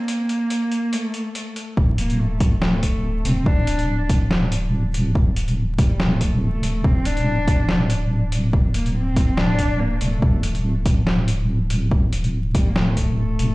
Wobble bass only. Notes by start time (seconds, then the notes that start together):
1.77 D1
3.25 D1
3.46 D1
3.79 D1
5.15 D1
6.63 D1
6.84 D1
7.17 D1
8.53 D1
10.01 D1
10.22 D1
10.55 D1
11.91 D1
13.39 D1